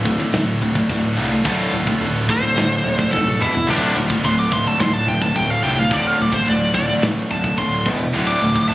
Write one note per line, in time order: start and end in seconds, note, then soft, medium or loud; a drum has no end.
0.00 0.20 D1 medium
0.00 1.15 D2 medium
0.00 1.15 A2 medium
0.00 1.16 D3 medium
0.00 1.16 A3 medium
0.00 1.15 F4 medium
0.05 0.18 D2 medium
0.05 0.18 A2 medium
0.05 kick medium
0.19 0.32 D2 medium
0.19 0.32 A2 medium
0.33 0.55 D1 medium
0.33 0.59 D2 medium
0.33 0.59 A2 medium
0.33 snare loud
0.33 china medium
0.61 0.82 D1 medium
0.61 0.75 D2 medium
0.61 0.74 A2 medium
0.75 0.89 D2 medium
0.75 0.89 A2 medium
0.75 kick medium
0.89 1.11 D1 medium
0.89 1.15 D2 medium
0.89 1.15 A2 medium
0.89 kick medium
0.89 china medium
1.16 1.38 C2 medium
1.16 1.29 D2 medium
1.16 1.30 A2 medium
1.16 1.29 D3 loud
1.16 1.43 A3 medium
1.16 1.43 F4 medium
1.31 1.43 D2 medium
1.31 1.44 A2 medium
1.44 1.66 D1 medium
1.44 1.71 D2 medium
1.44 1.71 A2 loud
1.44 1.71 D3 loud
1.44 3.39 A3 medium
1.44 3.39 F4 medium
1.44 kick loud
1.44 china medium
1.71 1.93 D1 medium
1.71 1.86 D2 medium
1.71 1.85 A2 medium
1.87 2.00 D2 medium
1.87 2.00 A2 medium
1.87 kick medium
2.00 2.43 D1 medium
2.00 2.26 D2 medium
2.00 2.26 A2 medium
2.00 china medium
2.29 2.42 D2 medium
2.29 2.42 A2 medium
2.29 3.11 C5 loud
2.29 kick medium
2.43 2.55 D2 medium
2.43 2.55 A2 medium
2.56 2.77 A1 medium
2.56 2.81 D2 medium
2.56 2.81 A2 medium
2.56 snare loud
2.56 china medium
2.84 3.06 D1 medium
2.84 2.97 D2 medium
2.84 2.96 A2 medium
2.98 3.11 D2 medium
2.98 3.10 A2 medium
2.98 kick medium
3.11 3.34 D1 medium
3.11 3.37 D2 medium
3.11 3.37 A2 medium
3.11 3.39 A4 medium
3.11 kick medium
3.11 snare medium
3.27 high tom medium
3.39 3.60 E1 medium
3.39 3.52 E2 medium
3.39 3.52 B2 medium
3.39 3.53 E3 medium
3.39 3.68 E4 medium
3.39 mid tom medium
3.53 3.66 E2 medium
3.53 3.67 B2 medium
3.53 floor tom medium
3.67 3.89 D1 medium
3.67 3.93 D2 medium
3.67 3.94 A2 medium
3.67 3.94 D3 loud
3.67 5.62 A3 medium
3.67 3.96 D4 loud
3.67 5.62 F4 medium
3.67 crash loud
3.67 china medium
3.67 splash medium
3.95 4.16 D1 medium
3.95 4.08 D2 medium
3.95 4.08 A2 medium
4.10 4.22 D2 medium
4.10 4.23 A2 medium
4.10 kick medium
4.24 4.66 D1 medium
4.24 4.49 D2 medium
4.24 4.49 A2 medium
4.24 4.39 C6 loud
4.24 china medium
4.39 4.53 D6 medium
4.51 4.66 D2 medium
4.51 4.65 A2 medium
4.51 4.68 C6 loud
4.51 kick medium
4.67 4.78 D2 medium
4.67 4.79 A2 medium
4.67 4.80 A5 medium
4.79 5.00 D1 medium
4.79 5.05 D2 medium
4.79 5.05 A2 medium
4.79 4.93 C6 medium
4.79 snare loud
4.79 china medium
4.93 5.07 A5 medium
5.06 5.28 D1 medium
5.06 5.21 D2 medium
5.06 5.20 A2 medium
5.06 5.21 G5 medium
5.21 5.33 D2 medium
5.21 5.33 A2 medium
5.21 5.36 A5 medium
5.21 kick medium
5.34 5.57 D1 medium
5.34 5.60 D2 medium
5.34 5.60 A2 medium
5.34 5.49 G5 medium
5.34 kick medium
5.34 china medium
5.51 5.63 F5 medium
5.62 5.84 C2 medium
5.62 5.75 D2 medium
5.62 5.75 A2 medium
5.62 5.76 D3 loud
5.62 5.89 A3 medium
5.62 5.89 F4 medium
5.62 5.79 G5 medium
5.76 5.89 D2 medium
5.76 5.89 A2 medium
5.76 5.91 F5 loud
5.90 6.12 D1 medium
5.90 6.17 D2 medium
5.90 6.17 A2 medium
5.90 6.17 D3 loud
5.90 7.85 A3 medium
5.90 7.85 F4 loud
5.90 6.07 D5 medium
5.90 kick loud
5.90 china medium
6.07 6.22 F5 medium
6.18 6.41 D1 medium
6.18 6.31 D2 medium
6.18 6.30 A2 medium
6.18 6.34 D5 loud
6.32 6.45 D2 medium
6.32 6.45 A2 medium
6.32 6.47 C5 loud
6.32 kick medium
6.46 6.90 D1 medium
6.46 6.71 D2 medium
6.46 6.71 A2 medium
6.46 6.74 D5 medium
6.46 china medium
6.74 6.88 D2 medium
6.74 6.88 A2 medium
6.74 7.02 D5 loud
6.74 kick medium
6.89 7.02 D2 medium
6.89 7.03 A2 medium
7.02 7.24 A1 medium
7.02 7.28 D2 medium
7.02 7.28 A2 medium
7.02 snare loud
7.02 china medium
7.30 7.51 D1 medium
7.30 7.45 D2 medium
7.30 7.44 A2 medium
7.30 7.58 A5 medium
7.44 7.58 D2 medium
7.44 7.58 A2 medium
7.44 kick medium
7.57 7.86 D1 medium
7.57 7.84 D2 medium
7.57 7.84 A2 medium
7.57 7.85 C6 loud
7.57 kick medium
7.57 china medium
7.85 8.07 E1 medium
7.85 7.99 E2 medium
7.85 7.99 B2 medium
7.85 7.99 E3 loud
7.85 kick loud
7.85 crash loud
8.00 8.13 E2 medium
8.00 8.14 B2 medium
8.13 8.35 D1 medium
8.13 8.40 D2 loud
8.13 8.40 A2 loud
8.13 8.40 D3 loud
8.13 8.74 A3 medium
8.13 8.74 F4 medium
8.13 china medium
8.27 8.68 D6 medium
8.41 8.63 D1 medium
8.41 8.55 D2 medium
8.41 8.55 A2 medium
8.56 8.70 D2 medium
8.56 8.70 A2 medium
8.56 kick medium
8.69 8.74 D1 medium
8.69 8.74 D2 medium
8.69 8.74 A2 medium
8.69 8.74 A5 loud
8.69 china medium